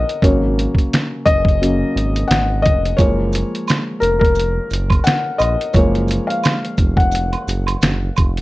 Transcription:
Already playing: A#4 D#5 F#5
0.09 closed hi-hat
0.22 G#1 C#3 F#3 A#3 C#5, kick, closed hi-hat
0.59 closed hi-hat
0.75 kick, closed hi-hat
0.93 finger snap, snare, closed hi-hat
1.26 F#1 D#5, kick, closed hi-hat
1.45 kick, closed hi-hat
1.61 C#3 F#3 A#3, closed hi-hat
1.96 G#1, closed hi-hat
2.16 closed hi-hat
2.28 G#1 F#5, snare, closed hi-hat
2.32 finger snap
2.62 F1 D#5, kick, closed hi-hat
2.85 closed hi-hat
2.97 F#1 F3 G#3 A#3 C#5, kick, closed hi-hat, maracas
3.33 closed hi-hat, maracas
3.55 closed hi-hat
3.68 finger snap, snare, closed hi-hat, high woodblock, maracas
4.00 F1 A#4, closed hi-hat, maracas
4.19 A#4, kick
4.25 closed hi-hat
4.35 maracas
4.39 closed hi-hat
4.71 F#1, closed hi-hat, maracas
4.90 kick, closed hi-hat, high woodblock
5.04 F#5, snare, closed hi-hat, maracas
5.08 finger snap
5.38 A#1 D#5, closed hi-hat, high woodblock, maracas
5.61 closed hi-hat
5.73 F#1 F3 G#3 A#3 C#5, kick, closed hi-hat, maracas
5.95 closed hi-hat
6.08 closed hi-hat, maracas
6.27 F5, closed hi-hat
6.43 finger snap, snare, closed hi-hat, high woodblock, maracas
6.65 closed hi-hat
6.77 F1, kick, closed hi-hat, maracas
6.97 F#5, kick, closed hi-hat
7.11 closed hi-hat, maracas
7.32 closed hi-hat, high woodblock
7.47 F#1, closed hi-hat, maracas
7.67 closed hi-hat, high woodblock
7.82 F#1, finger snap, snare, closed hi-hat, maracas
8.16 F1, kick, closed hi-hat, high woodblock, maracas
8.37 closed hi-hat

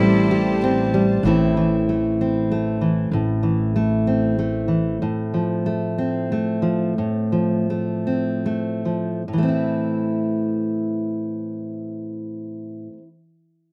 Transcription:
Already playing: A1 A2 E3 C4 E4 G4 A4 C5 A5
0.00 G3
0.31 G4
0.64 C4
0.94 G3
1.23 A1 A2 E3 A3 C4
1.27 E4
1.57 E3
1.89 A3
2.21 C4
2.52 A3
2.81 E3
3.11 A1 A2
3.43 E3
3.76 A3
4.07 C4
4.39 A3
4.68 E3
5.02 A2
5.34 F3
5.66 A3
5.98 C4
6.32 A3
6.62 F3
6.98 A2
7.32 F3
7.70 A3
8.07 C4
8.46 A3
8.85 F3
9.28 A2
9.33 E3
9.38 A3
9.43 C4
9.48 E4

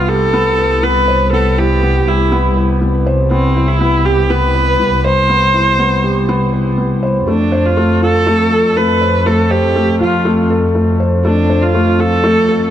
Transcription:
Already playing: C2 B3 E4 F4
0.09 G4 A4
0.34 B3
0.59 B4
0.83 B3 B4
1.08 C5
1.33 B3 A4
1.58 E4 G4
1.83 B3
2.07 E4 G4
2.32 B3
2.57 B4
2.81 B3
3.06 C5
3.31 B3 C4
3.56 E4
3.68 E4
3.81 B3
4.05 G4
4.30 B3 B4
4.55 B4
4.80 B3
5.05 C5
5.29 B3
5.54 E4
5.79 B3
6.04 G4
6.29 B3
6.53 B4
6.78 B3
7.03 C5
7.28 F2 A3 D4
7.52 C5
7.65 F4
7.77 A3
8.02 F4 A4
8.27 A3
8.52 A4
8.77 A3 B4
9.02 C5
9.26 A3 A4
9.51 G4 C5
9.76 A3
10.00 F4
10.25 A3
10.50 A4
10.75 A3
11.00 C5
11.25 A3 D4
11.50 C5
11.62 F4
11.74 A3
11.99 F4 A4
12.24 A3
12.49 A4

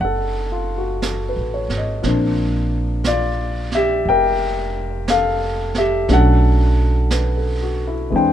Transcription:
Already playing: F#3 A3 C#4 D#4
0.00 F#1 F#5, brush sweep
0.05 A4
0.52 F4
0.78 F#4
1.02 A4, brush sweep, snare, hi-hat pedal
1.29 B4
1.36 A1
1.54 C#5
1.68 G#1, snare
1.78 D#5
2.02 A#1 F3 A#3 C4, brush sweep, snare
2.07 D4
3.04 F4 D5, brush sweep, snare, hi-hat pedal
3.71 E5, snare
3.76 G4
4.05 F1 G5, brush sweep
4.10 A#4
5.08 A4 F5, brush sweep, snare, hi-hat pedal
5.74 G4 E5, snare
6.08 B1 F#3 A3 C#4 D4 A4, brush sweep, snare
6.13 F#5
7.10 B4, brush sweep, snare, hi-hat pedal
7.37 A4
7.63 F#4
7.87 E4
8.10 E2 E3 G#3 C4, brush sweep
8.15 D4 C5 G5

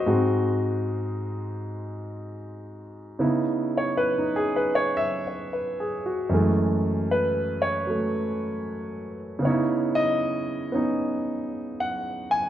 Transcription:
Already playing: C5 D#5
0.06 G#2 G#3 C4 F#4
3.19 C#3 B3 D#4 E4
3.78 C#5
3.97 B4
4.18 D#4
4.36 G#4
4.56 B4
4.75 C#5
4.97 E5
5.27 C#5
5.53 B4
5.80 G#4
6.06 F#4
6.29 F#2 E3 G#3
6.34 A3
7.11 B4
7.62 C#5
7.87 F#3 A3
9.39 C#3 B3
9.45 D#4 C#5
9.50 E4
9.95 D#5
10.72 B3 C#4 D#4
11.80 F#5
12.31 G#5

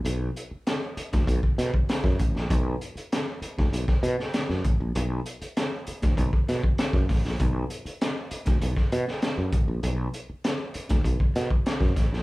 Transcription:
0.05 B1, closed hi-hat
0.36 closed hi-hat
0.51 muted fretless electric bass stroke
0.67 snare, closed hi-hat
0.97 muted fretless electric bass stroke, closed hi-hat
1.13 D2, kick, snare, closed hi-hat
1.27 B1, kick, closed hi-hat
1.43 kick
1.58 B2, snare, closed hi-hat
1.74 kick
1.89 snare, closed hi-hat
2.04 F#2, kick, snare
2.19 A1, kick, closed hi-hat
2.35 A#1, snare
2.50 B1, kick, closed hi-hat
2.81 closed hi-hat
2.95 muted fretless electric bass stroke, closed hi-hat
3.12 snare, closed hi-hat
3.42 muted fretless electric bass stroke, closed hi-hat
3.58 D2, kick, snare
3.73 B1, closed hi-hat
3.88 kick, snare
4.03 B2, closed hi-hat
4.20 snare
4.34 snare, closed hi-hat
4.50 F#2, snare
4.64 A1, kick, closed hi-hat
4.80 A#1
4.95 B1, closed hi-hat
5.26 closed hi-hat
5.42 muted fretless electric bass stroke, closed hi-hat
5.57 snare, closed hi-hat
5.87 muted fretless electric bass stroke, closed hi-hat
6.02 D2, kick, snare, closed hi-hat
6.17 B1, kick, closed hi-hat
6.33 kick
6.48 B2, snare, closed hi-hat
6.64 kick
6.78 snare, closed hi-hat
6.93 F#2, kick, snare
7.09 A1, kick, snare, open hi-hat
7.25 A#1, snare
7.40 B1, kick, closed hi-hat
7.70 closed hi-hat
7.85 muted fretless electric bass stroke, closed hi-hat
8.01 snare, closed hi-hat
8.31 muted fretless electric bass stroke, closed hi-hat
8.46 D2, kick, snare, closed hi-hat
8.61 B1, closed hi-hat
8.77 kick, snare
8.92 B2, closed hi-hat
9.08 snare
9.22 snare, closed hi-hat
9.38 F#2
9.52 A1, kick, closed hi-hat
9.68 A#1
9.83 B1, closed hi-hat
10.14 closed hi-hat
10.30 muted fretless electric bass stroke
10.44 snare, closed hi-hat
10.74 muted fretless electric bass stroke, closed hi-hat
10.89 D2, kick, snare, closed hi-hat
11.04 B1, kick, closed hi-hat
11.20 kick
11.36 B2, snare, closed hi-hat
11.51 kick
11.66 snare, closed hi-hat
11.81 F#2, kick, snare
11.96 A1, kick, snare, closed hi-hat
12.13 A#1, snare

